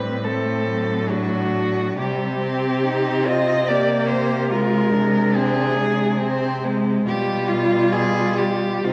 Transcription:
cello
Already playing: A2 G3 C4 B4
0.23 A3 C4 A4
0.67 F#3
1.09 D4 F#4
1.97 C3 G3 C4 G4
2.42 C4
2.83 D#4
3.25 F4 D#5
3.67 A#3 G4 D5
4.08 C5
4.50 G#3 F4 A#4
4.92 D4
5.35 C4 G#4
5.76 G#3
6.18 C4
6.64 G#3
7.06 B2 G3 F4 G4
7.48 F4
7.92 G#4
8.37 G4
8.84 C3 C4 D#4 F4

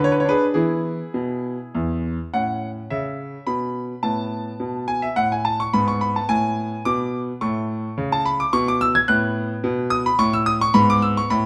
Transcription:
grand piano
Already playing: D3
0.04 C#5
0.12 B4
0.20 C#5
0.25 D4
0.29 G#4 B4
0.54 E3 B3 E4 G#4
1.14 B2
1.75 E2
2.34 A2 C#4 F#5
2.90 C#3 E5
3.47 B2 B5
4.03 A2 B3 A5
4.60 B2
4.88 G#5
5.02 E5
5.16 A2 F#5
5.32 G#5
5.45 A5
5.60 C#6
5.73 G#2 B3 B5
5.88 C#6
6.01 B5
6.16 A5
6.29 A2 G#5
6.85 B2 D6
7.41 A2 A3 C#6
7.98 C#3
8.12 A5
8.26 B5
8.40 D6
8.53 B2 C#6
8.68 D6
8.81 E6
8.95 G#6
9.08 A2 B3 F#6
9.64 B2
9.90 D#6
10.06 B5
10.19 A2 C#6
10.33 E6
10.46 D#6
10.61 C#6
10.74 G#2 B3 B5
10.90 D6
11.02 E6
11.17 C#6
11.30 A2 B5

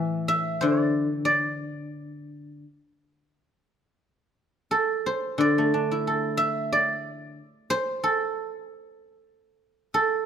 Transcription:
guzheng
Already playing: A2 E3 A4 C5 D5 E5
0.28 E5
0.61 D3 C5
0.80 D5
1.25 D5
4.71 A4
5.06 C5
5.38 D3 D5
5.58 A3
5.74 D4
5.91 E4
6.07 A4
6.37 E5
6.72 D5
7.70 C5
8.04 A4
9.94 A4

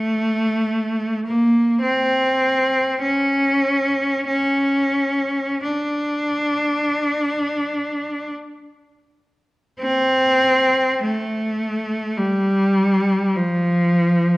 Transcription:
cello
Already playing: A3
1.26 A#3
1.82 C4
3.02 C#4
4.27 C#4
5.65 D4
9.80 C4
11.03 A3
12.17 G3
13.35 F3

